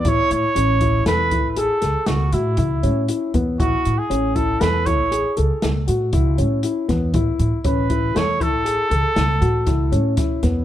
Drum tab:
HH |xxxxxxxxxxxxxx|xxxxxxxxxxxxxx|xxxxxxxxxxxxxx|
SD |----o--oo-----|----o---o----o|----o---o-o-oo|
BD |o--o-o----o--o|o--o-o----o--o|oooo-o-o-oo-oo|